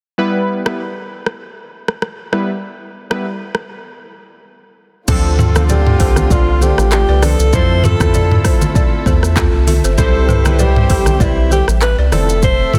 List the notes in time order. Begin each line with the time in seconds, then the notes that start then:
0.18 G3 B3 E4 B4
0.65 G3 B3 E4 B4, cross-stick
1.26 cross-stick
1.88 cross-stick
2.02 cross-stick
2.32 G3 B3 E4 B4, cross-stick
3.10 G3 B3 E4 B4, cross-stick
3.55 cross-stick
5.08 D2 D3 F3 A3 C4 D4 F4 A4, kick, crash, low conga, shaker
5.39 F4 A4, mid tom, high conga, shaker
5.55 F3 C4 D4 A4 C5, cross-stick, high conga, shaker
5.69 G4 A4 D5, low conga, shaker
5.87 mid tom
6.00 C2 A4 C5, kick, open hi-hat, shaker
6.16 cross-stick, high conga, shaker
6.30 C2 F4 A4 D5, kick, low conga, shaker
6.61 G4 A4 C5, high conga, shaker
6.78 A1, cross-stick, shaker
6.92 G4, cross-stick, clap, shaker
7.09 C2 B4 D5
7.22 F3 C4 D4 A4 B4 D5, cross-stick, open hi-hat, high conga, shaker
7.39 C2, shaker
7.53 F2 F3 C4 E4 F4 A4 C5 E5, kick, low conga, shaker
7.84 F4 A4, mid tom, high conga, shaker
8.00 F2 F3 C4 E4 A4 C5, kick, cross-stick, high conga, shaker
8.14 A4 D5, low conga, shaker
8.31 mid tom
8.45 A4 C5, kick, cross-stick, open hi-hat, shaker
8.61 high conga, shaker
8.75 A4 D5, kick, low conga, shaker
9.06 E2 A4 C5, kick, high conga, shaker
9.23 cross-stick, shaker
9.36 F4 A4, kick, cross-stick, clap, shaker
9.53 C2
9.67 F4 A4, open hi-hat, high conga, shaker
9.84 G1 A4 C5, shaker
9.98 C2 G3 C4 E4 G4 A4 C5, kick, low conga, shaker
10.29 G4 B4, mid tom, high conga, shaker
10.45 G3 C4 E4 A4 B4 C5, cross-stick, high conga, shaker
10.59 G4 B4 D5, low conga, shaker
10.76 mid tom
10.90 B1 A4 C5, kick, open hi-hat, shaker
11.06 cross-stick, high conga, shaker
11.20 B1 E4 B4 D5, kick, low conga, shaker
11.51 G4 A4 C5, high conga, shaker
11.68 A1, cross-stick, shaker
11.81 B4, cross-stick, clap, shaker
11.98 C2 B4 D5
12.12 F1 F3 A3 C4 E4 A4 D5 E5, cross-stick, open hi-hat, high conga, shaker
12.29 shaker
12.43 C5, kick, low conga, shaker
12.73 F4 A4, mid tom, high conga, shaker